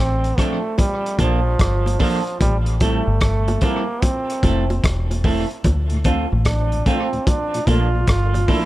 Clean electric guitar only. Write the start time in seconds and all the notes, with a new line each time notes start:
0.38 F3 C4 D4 A4
1.19 F3 A#3 D4 A4
1.86 muted clean electric guitar stroke
2.00 F3 A#3 D4 A4
2.81 G3 C4 E4 A4
3.62 G3 C4 E4 A4
4.44 A3 C4 E4 A4
5.24 A3 C4 E4 A4
6.05 A3 C4 F4 A4
6.86 A3 C4 F4 A4
7.67 F3 A#3 D4 A4
8.34 muted clean electric guitar stroke
8.48 F3 A#3 D4 A4